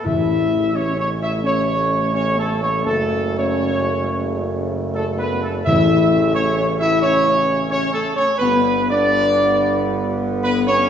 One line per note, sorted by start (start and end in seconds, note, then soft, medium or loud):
0.04 2.82 A1 medium
0.04 1.07 A2 medium
0.04 5.62 C#3 medium
0.04 5.62 A3 medium
0.04 0.72 E4 medium
0.04 0.76 E5 medium
0.74 0.96 C#4 medium
0.74 0.99 C#5 medium
0.97 1.08 C#4 medium
0.97 1.10 C#5 medium
1.21 1.43 E4 medium
1.21 1.33 E5 loud
1.43 2.11 C#4 medium
1.43 2.12 C#5 medium
2.15 2.37 C#4 medium
2.15 2.37 C#5 medium
2.38 2.62 A3 medium
2.38 2.61 A4 medium
2.63 2.86 C#4 medium
2.63 2.85 C#5 medium
2.86 5.63 F#1 medium
2.86 3.35 A3 medium
2.86 3.34 A4 medium
3.38 4.56 C#4 medium
3.38 4.56 C#5 loud
4.95 5.06 A3 medium
4.95 5.06 A4 medium
5.18 5.41 B3 medium
5.18 5.41 B4 medium
5.43 5.55 A3 medium
5.43 5.54 A4 medium
5.65 8.08 A1 medium
5.65 6.65 A2 medium
5.65 8.22 C#3 medium
5.65 8.22 A3 medium
5.65 6.31 E4 medium
5.65 6.31 E5 loud
6.35 6.46 C#4 medium
6.35 6.56 C#5 loud
6.57 6.69 C#4 medium
6.57 6.68 C#5 medium
6.80 7.02 E4 medium
6.80 7.01 E5 loud
7.02 7.69 C#4 medium
7.02 7.66 C#5 loud
7.70 7.92 C#4 loud
7.70 7.92 C#5 loud
7.94 8.04 A3 medium
7.94 8.15 A4 medium
8.17 8.27 C#4 medium
8.17 8.38 C#5 loud
8.38 10.89 G1 medium
8.38 10.89 D3 medium
8.38 10.89 B3 medium
8.38 8.88 B3 medium
8.38 8.87 B4 loud
8.90 10.07 D4 loud
8.90 10.06 D5 loud
10.44 10.66 B3 loud
10.44 10.55 B4 loud
10.67 10.89 C#4 loud
10.67 10.89 C#5 loud